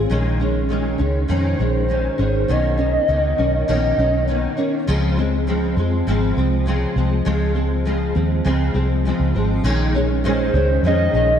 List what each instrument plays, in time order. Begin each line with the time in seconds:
Already playing: nylon-string guitar C4 F4 G#4
0.10 fingered electric bass A#1, nylon-string guitar A#2 D#3 G#3 C#4
0.40 nylon-string guitar D#3 G#3 C#4
0.69 nylon-string guitar A#2 D#3 G#3 C#4
0.98 fingered electric bass C#2, nylon-string guitar D#3 G#3 C#4
1.28 fingered electric bass F2, nylon-string guitar A#2 D#3 G#3 C#4, soft synth lead C5
1.59 fingered electric bass A#1, nylon-string guitar D#3 G#3 C#4
1.88 nylon-string guitar A#2 D#3 G#3 C#4
2.18 fingered electric bass G#1, nylon-string guitar D#3 G#3 C#4
2.48 fingered electric bass B1, nylon-string guitar B2 D#3 A#3 C#4, soft synth lead D#5
2.78 nylon-string guitar D#3 A#3 C#4
3.08 fingered electric bass C#2, nylon-string guitar B2 D#3 A#3 C#4
3.38 fingered electric bass B1, nylon-string guitar D#3 A#3 C#4
3.68 fingered electric bass A#1, nylon-string guitar B2 D#3 A#3 C#4, soft synth lead D#5
3.98 fingered electric bass B1, nylon-string guitar D#3 A#3 C#4
4.28 nylon-string guitar B2 D#3 A#3 C#4
4.57 nylon-string guitar D#3 A#3 C#4
4.87 fingered electric bass C#2, nylon-string guitar C#3 F3 G#3 C4
5.17 nylon-string guitar F3 G#3 C4
5.47 nylon-string guitar C#3 F3 G#3 C4
5.77 fingered electric bass F2, nylon-string guitar F3 G#3 C4
6.07 fingered electric bass G#1, nylon-string guitar C#3 F3 G#3 C4
6.37 fingered electric bass C2, nylon-string guitar F3 G#3 C4
6.66 nylon-string guitar C#3 F3 G#3 C4
6.96 fingered electric bass C2, nylon-string guitar F3 G#3 C4
7.25 fingered electric bass C#2, nylon-string guitar C#3 F3 G#3 C4
7.54 nylon-string guitar F3 G#3 C4
7.85 nylon-string guitar C#3 F3 G#3 C4
8.15 fingered electric bass D#2, nylon-string guitar F3 G#3 C4
8.45 fingered electric bass C#2, nylon-string guitar C#3 F3 G#3 C4
8.74 fingered electric bass C2, nylon-string guitar F3 G#3 C4
9.05 nylon-string guitar C#3 F3 G#3 C4
9.20 fingered electric bass C#2
9.35 fingered electric bass G#1, nylon-string guitar F3 G#3 C4
9.64 fingered electric bass A#1, nylon-string guitar A#2 D#3 G#3 C#4
9.95 nylon-string guitar D#3 G#3 C#4
10.24 nylon-string guitar A#2 D#3 G#3 C#4, soft synth lead C5
10.54 fingered electric bass C#2, nylon-string guitar D#3 G#3 C#4
10.83 fingered electric bass F2, nylon-string guitar A#2 D#3 G#3 C#4, soft synth lead D#5
11.13 fingered electric bass A#1, nylon-string guitar D#3 G#3 C#4, soft synth lead D#5